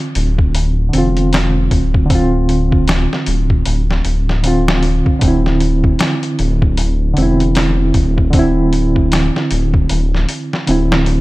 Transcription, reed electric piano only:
0, 0, Header, 1, 2, 480
1, 0, Start_track
1, 0, Key_signature, -1, "minor"
1, 0, Tempo, 779221
1, 1299, Time_signature, 4, 2, 24, 8
1, 6904, End_track
2, 0, Start_track
2, 0, Title_t, "Reed electric piano"
2, 0, Program_c, 0, 4
2, 0, Control_c, 0, 64, 127
2, 0, Note_on_c, 0, 50, 73
2, 0, Note_on_c, 0, 60, 64
2, 0, Note_on_c, 0, 65, 84
2, 541, Note_off_c, 0, 50, 0
2, 548, Note_on_c, 0, 50, 87
2, 556, Note_off_c, 0, 60, 0
2, 569, Note_off_c, 0, 65, 0
2, 575, Note_on_c, 0, 60, 82
2, 604, Note_on_c, 0, 65, 92
2, 1260, Note_off_c, 0, 50, 0
2, 1268, Note_on_c, 0, 50, 87
2, 1273, Note_off_c, 0, 60, 0
2, 1288, Note_off_c, 0, 65, 0
2, 1295, Note_on_c, 0, 60, 82
2, 1324, Note_on_c, 0, 65, 100
2, 2700, Note_off_c, 0, 50, 0
2, 2713, Note_off_c, 0, 60, 0
2, 2727, Note_on_c, 0, 50, 89
2, 2728, Note_off_c, 0, 65, 0
2, 2743, Note_on_c, 0, 60, 77
2, 2757, Note_on_c, 0, 65, 98
2, 2888, Note_off_c, 0, 50, 0
2, 2896, Note_off_c, 0, 60, 0
2, 2903, Note_off_c, 0, 65, 0
2, 3196, Note_on_c, 0, 50, 81
2, 3224, Note_on_c, 0, 60, 70
2, 3225, Control_c, 0, 64, 0
2, 3251, Note_on_c, 0, 64, 84
2, 3350, Control_c, 0, 64, 127
2, 4384, Note_off_c, 0, 50, 0
2, 4396, Note_on_c, 0, 50, 91
2, 4398, Note_off_c, 0, 60, 0
2, 4411, Note_off_c, 0, 64, 0
2, 4424, Note_on_c, 0, 60, 86
2, 4451, Note_on_c, 0, 64, 101
2, 5104, Note_off_c, 0, 50, 0
2, 5116, Note_on_c, 0, 50, 93
2, 5118, Note_off_c, 0, 60, 0
2, 5131, Note_off_c, 0, 64, 0
2, 5142, Note_on_c, 0, 60, 84
2, 5168, Note_on_c, 0, 64, 99
2, 6544, Note_off_c, 0, 50, 0
2, 6557, Note_off_c, 0, 60, 0
2, 6570, Note_off_c, 0, 64, 0
2, 6570, Note_on_c, 0, 50, 83
2, 6581, Note_on_c, 0, 60, 77
2, 6595, Note_on_c, 0, 64, 89
2, 6729, Note_off_c, 0, 50, 0
2, 6735, Note_off_c, 0, 60, 0
2, 6742, Note_off_c, 0, 64, 0
2, 6904, End_track
0, 0, End_of_file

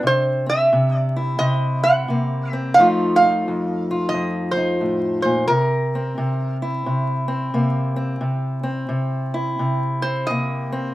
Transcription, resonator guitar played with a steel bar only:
0, 0, Header, 1, 2, 480
1, 0, Start_track
1, 0, Tempo, 684932
1, 21, Time_signature, 4, 2, 24, 8
1, 7669, End_track
2, 0, Start_track
2, 0, Title_t, "Resonator guitar played with a steel bar"
2, 0, Program_c, 0, 25
2, 48, Note_on_c, 0, 72, 91
2, 316, Note_off_c, 0, 72, 0
2, 347, Note_on_c, 0, 76, 81
2, 677, Note_off_c, 0, 76, 0
2, 677, Note_on_c, 0, 74, 81
2, 785, Note_off_c, 0, 74, 0
2, 972, Note_on_c, 0, 75, 95
2, 1286, Note_off_c, 0, 75, 0
2, 1286, Note_on_c, 0, 78, 97
2, 1756, Note_off_c, 0, 78, 0
2, 1756, Note_on_c, 0, 76, 97
2, 1919, Note_off_c, 0, 76, 0
2, 1922, Note_on_c, 0, 77, 101
2, 2005, Note_off_c, 0, 77, 0
2, 2215, Note_on_c, 0, 77, 96
2, 2855, Note_off_c, 0, 77, 0
2, 2865, Note_on_c, 0, 75, 86
2, 3160, Note_off_c, 0, 75, 0
2, 3163, Note_on_c, 0, 72, 81
2, 3631, Note_off_c, 0, 72, 0
2, 3660, Note_on_c, 0, 72, 66
2, 3834, Note_off_c, 0, 72, 0
2, 3837, Note_on_c, 0, 70, 73
2, 4600, Note_off_c, 0, 70, 0
2, 7024, Note_on_c, 0, 72, 68
2, 7195, Note_on_c, 0, 75, 77
2, 7215, Note_off_c, 0, 72, 0
2, 7659, Note_off_c, 0, 75, 0
2, 7669, End_track
0, 0, End_of_file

